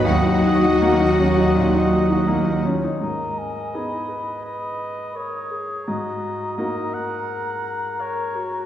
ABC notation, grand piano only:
X:1
M:4/4
L:1/16
Q:1/4=84
K:D#phr
V:1 name="Grand piano"
D,, D F D A, D C D A,, D F D A, D C D | [K:G#m] G,,4 [B,DG]12 | G,,4 [A,DF]12 |]